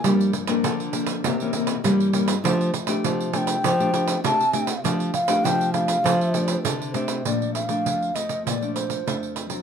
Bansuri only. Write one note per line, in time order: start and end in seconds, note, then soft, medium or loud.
3.33 3.39 G#5 loud
3.38 4.20 G5 loud
4.25 4.81 A5 loud
5.14 5.46 F5 loud
5.44 5.73 G5 loud
5.73 6.60 F5 loud
7.26 7.54 D5 medium
7.54 8.16 F5 medium
8.15 8.46 D#5 medium
8.47 8.74 D5 medium
8.75 9.32 C5 medium